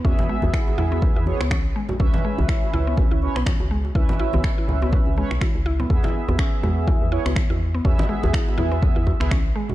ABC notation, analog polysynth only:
X:1
M:4/4
L:1/16
Q:"Swing 16ths" 1/4=123
K:C#m
V:1 name="Analog polysynth"
[B,Ge]8- [B,Ge]2 [B,Gc] z4 z | [CBe]8- [CBe]2 [CBc] z4 z | [CBe]8- [CBe]2 [CBc] z4 z | [B,Ge]8- [B,Ge]2 [B,Gc] z4 z |
[B,Ge]8- [B,Ge]2 z [B,Ge] z4 |]